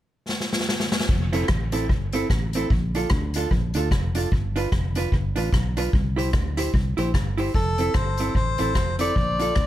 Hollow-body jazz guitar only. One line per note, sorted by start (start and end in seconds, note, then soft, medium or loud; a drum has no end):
1.33 1.45 C4 medium
1.33 1.45 E4 medium
1.33 1.46 A4 medium
1.72 1.85 C4 medium
1.72 1.86 E4 medium
1.72 1.86 A4 medium
2.13 2.26 C4 medium
2.13 2.26 E4 loud
2.13 2.27 A4 medium
2.31 muted hollow-body jazz guitar stroke soft
2.55 2.67 C4 medium
2.55 2.68 E4 loud
2.55 2.68 A4 medium
2.95 3.07 D4 medium
2.95 3.08 F4 medium
2.95 3.08 A4 medium
3.36 3.48 D4 medium
3.36 3.48 F4 medium
3.36 3.48 A4 medium
3.75 3.87 D4 medium
3.75 3.88 F4 medium
3.75 3.88 A4 loud
3.92 muted hollow-body jazz guitar stroke soft
4.15 4.28 D4 medium
4.15 4.28 F4 medium
4.15 4.29 A4 medium
4.56 4.68 D4 medium
4.56 4.69 F4 loud
4.56 4.69 B4 medium
4.96 5.08 D4 medium
4.96 5.09 F4 medium
4.96 5.09 B4 medium
5.36 5.48 D4 medium
5.36 5.49 F4 medium
5.36 5.49 B4 medium
5.53 muted hollow-body jazz guitar stroke soft
5.77 5.89 D4 medium
5.77 5.90 F4 medium
5.77 5.90 B4 loud
6.16 6.29 E4 medium
6.16 6.30 G4 medium
6.16 6.30 C5 loud
6.57 6.70 E4 medium
6.57 6.70 G4 medium
6.57 6.71 C5 medium
6.97 7.10 E4 medium
6.97 7.11 G4 medium
6.97 7.11 C5 loud
7.37 7.50 E4 medium
7.37 7.51 G4 medium
7.37 7.51 C5 medium
7.79 7.91 C4 medium
7.79 7.92 E4 medium
7.79 7.92 A4 medium
8.20 8.32 C4 medium
8.20 8.32 E4 medium
8.20 8.33 A4 medium
8.59 8.72 C4 medium
8.59 8.72 E4 medium
8.59 8.72 A4 medium
8.76 muted hollow-body jazz guitar stroke soft
8.99 9.12 C4 medium
8.99 9.12 E4 medium
8.99 9.13 A4 loud
9.39 9.52 D4 medium
9.39 9.53 F4 medium
9.39 9.54 A4 medium